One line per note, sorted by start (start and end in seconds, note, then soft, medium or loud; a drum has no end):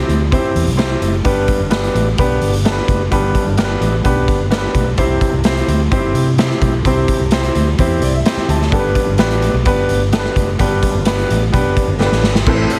0.00 0.18 C4 medium
0.00 0.18 E4 medium
0.00 0.18 G4 medium
0.00 0.18 C5 medium
0.08 0.36 D2 medium
0.08 closed hi-hat medium
0.31 0.65 C4 medium
0.31 0.65 E4 medium
0.31 0.65 G4 medium
0.31 0.65 C5 medium
0.31 kick medium
0.31 closed hi-hat medium
0.55 0.67 E2 medium
0.55 closed hi-hat medium
0.66 0.94 C2 medium
0.66 closed hi-hat soft
0.77 1.11 C4 medium
0.77 1.11 E4 medium
0.77 1.11 G4 medium
0.77 1.11 C5 medium
0.77 snare loud
0.77 closed hi-hat medium
1.01 1.20 F#1 medium
1.01 closed hi-hat medium
1.25 1.44 G1 medium
1.25 1.91 G2 medium
1.25 1.58 B3 medium
1.25 1.58 D4 medium
1.25 1.58 G4 medium
1.25 1.58 B4 medium
1.25 kick medium
1.25 closed hi-hat medium
1.48 kick medium
1.48 closed hi-hat medium
1.60 1.88 G1 medium
1.70 2.04 B3 medium
1.70 2.04 D4 medium
1.70 2.05 G4 medium
1.70 2.05 B4 medium
1.70 snare loud
1.70 closed hi-hat medium
1.84 closed hi-hat soft
1.95 2.14 A1 medium
1.95 closed hi-hat medium
2.18 2.52 B3 medium
2.18 2.52 D4 medium
2.18 2.52 G4 medium
2.18 2.52 B4 medium
2.18 kick medium
2.18 closed hi-hat medium
2.41 2.79 G1 medium
2.41 closed hi-hat medium
2.53 closed hi-hat soft
2.65 2.98 B3 medium
2.65 2.98 D4 medium
2.65 2.98 G4 medium
2.65 2.71 A4 medium
2.65 snare loud
2.65 closed hi-hat medium
2.72 3.02 B4 medium
2.77 snare soft
2.88 3.07 F#1 medium
2.88 kick medium
2.88 closed hi-hat medium
3.11 3.30 G1 loud
3.11 3.78 G2 medium
3.11 3.45 B3 medium
3.11 3.45 D4 medium
3.11 3.45 G4 medium
3.11 3.45 B4 medium
3.11 kick medium
3.11 closed hi-hat medium
3.35 kick medium
3.35 closed hi-hat medium
3.46 3.74 G1 medium
3.57 3.91 B3 medium
3.57 3.91 D4 medium
3.57 3.91 G4 medium
3.57 3.64 A#4 medium
3.57 snare loud
3.57 closed hi-hat medium
3.64 3.94 B4 medium
3.81 4.00 A1 medium
3.81 closed hi-hat medium
4.04 4.23 B1 medium
4.04 4.38 B3 medium
4.04 4.38 D4 medium
4.04 4.38 G4 medium
4.04 4.38 B4 medium
4.04 kick medium
4.04 closed hi-hat medium
4.28 4.66 G1 medium
4.28 kick medium
4.28 closed hi-hat medium
4.51 4.84 B3 medium
4.51 4.85 D4 medium
4.51 4.85 G4 medium
4.51 4.57 A#4 medium
4.51 snare loud
4.51 closed hi-hat medium
4.58 4.88 B4 medium
4.74 4.93 B1 medium
4.74 kick medium
4.74 closed hi-hat medium
4.98 5.17 C2 medium
4.98 5.64 C3 medium
4.98 5.31 C4 medium
4.98 5.31 E4 medium
4.98 5.32 G4 medium
4.98 5.32 C5 medium
4.98 kick medium
4.98 closed hi-hat medium
5.21 kick medium
5.21 closed hi-hat medium
5.32 5.61 C2 medium
5.44 5.78 C4 medium
5.44 5.78 E4 medium
5.44 5.78 G4 medium
5.44 5.79 C5 medium
5.44 snare loud
5.44 closed hi-hat medium
5.57 closed hi-hat soft
5.68 5.87 D2 medium
5.68 closed hi-hat medium
5.91 6.10 G1 medium
5.91 6.25 C4 medium
5.91 5.97 D#4 medium
5.91 6.25 G4 medium
5.91 6.25 C5 medium
5.91 kick medium
5.91 closed hi-hat medium
5.97 6.28 E4 medium
6.14 6.52 C3 medium
6.14 closed hi-hat medium
6.38 6.72 C4 medium
6.38 6.72 E4 medium
6.38 6.72 G4 medium
6.38 6.72 C5 medium
6.38 snare loud
6.38 closed hi-hat medium
6.51 snare soft
6.61 6.80 B1 medium
6.61 kick medium
6.61 closed hi-hat medium
6.85 7.04 C2 medium
6.85 7.52 C3 medium
6.85 7.19 C4 medium
6.85 7.19 E4 medium
6.85 7.19 G4 medium
6.85 7.19 C5 medium
6.85 kick medium
6.85 closed hi-hat medium
7.08 kick medium
7.08 closed hi-hat medium
7.20 7.48 C2 medium
7.31 7.65 C4 medium
7.31 7.66 E4 medium
7.31 7.66 G4 medium
7.31 7.66 C5 medium
7.31 snare loud
7.31 closed hi-hat medium
7.43 closed hi-hat soft
7.55 7.74 D2 medium
7.55 closed hi-hat medium
7.78 7.97 E2 medium
7.78 8.12 C4 medium
7.78 8.12 E4 medium
7.78 8.12 G4 medium
7.78 8.13 C5 medium
7.78 kick medium
7.78 closed hi-hat medium
8.02 8.21 C2 medium
8.02 8.13 D5 medium
8.02 closed hi-hat medium
8.15 8.25 E5 medium
8.26 8.59 C4 medium
8.26 8.59 E4 medium
8.26 8.59 G4 medium
8.26 8.59 C5 medium
8.26 8.48 G5 medium
8.26 snare loud
8.26 closed hi-hat medium
8.37 muted fingered electric bass stroke soft
8.37 snare soft
8.48 8.67 D2 medium
8.48 8.71 A5 medium
8.48 closed hi-hat medium
8.62 snare soft
8.72 8.91 G1 medium
8.72 9.39 G2 medium
8.72 9.06 B3 medium
8.72 9.06 D4 medium
8.72 9.06 G4 medium
8.72 8.78 A4 medium
8.72 kick medium
8.72 closed hi-hat medium
8.79 9.09 B4 medium
8.95 kick medium
8.95 closed hi-hat medium
9.07 9.16 G1 medium
9.18 9.47 A1 medium
9.18 9.52 B3 medium
9.18 9.53 D4 medium
9.18 9.53 G4 medium
9.18 9.53 B4 medium
9.18 snare loud
9.18 closed hi-hat medium
9.30 closed hi-hat medium
9.42 closed hi-hat medium
9.53 9.63 B1 medium
9.65 9.85 G1 medium
9.65 9.99 B3 medium
9.65 9.99 D4 medium
9.65 9.99 G4 medium
9.65 10.00 B4 medium
9.65 kick medium
9.65 closed hi-hat medium
9.89 10.27 G1 medium
9.89 closed hi-hat medium
10.13 10.46 B3 medium
10.13 10.46 D4 medium
10.13 10.46 G4 medium
10.13 10.19 A4 medium
10.13 snare loud
10.13 closed hi-hat medium
10.19 10.49 B4 medium
10.25 snare soft
10.36 10.55 F#1 medium
10.36 kick medium
10.36 closed hi-hat medium
10.59 10.78 G1 loud
10.59 11.26 G2 medium
10.59 10.93 B3 medium
10.59 10.93 D4 medium
10.59 10.93 G4 medium
10.59 10.93 B4 medium
10.59 kick medium
10.59 closed hi-hat medium
10.83 kick medium
10.83 closed hi-hat medium
10.95 11.23 G1 medium
11.05 11.40 B3 medium
11.05 11.40 D4 medium
11.05 11.40 G4 medium
11.05 11.40 B4 medium
11.05 snare loud
11.05 closed hi-hat medium
11.19 closed hi-hat soft
11.30 11.49 A1 medium
11.30 closed hi-hat medium
11.52 11.63 B1 medium
11.52 11.86 B3 medium
11.52 11.86 D4 medium
11.52 11.87 G4 medium
11.52 11.87 B4 medium
11.52 kick medium
11.52 closed hi-hat medium
11.64 11.74 G1 medium
11.77 kick medium
11.77 closed hi-hat medium
11.88 12.07 G1 medium
11.99 12.33 B3 medium
11.99 12.33 D4 medium
11.99 12.33 G4 medium
11.99 12.06 A4 medium
11.99 snare medium
12.06 12.36 B4 medium
12.12 12.21 A1 medium
12.12 snare medium
12.23 12.42 G#1 medium
12.23 snare medium
12.35 snare medium
12.46 12.65 A1 medium
12.46 12.79 A2 medium
12.46 12.79 C4 medium
12.46 12.79 E4 medium
12.46 12.79 A4 medium
12.46 12.53 B4 medium
12.46 kick loud
12.46 crash medium
12.54 12.79 C5 medium
12.70 closed hi-hat medium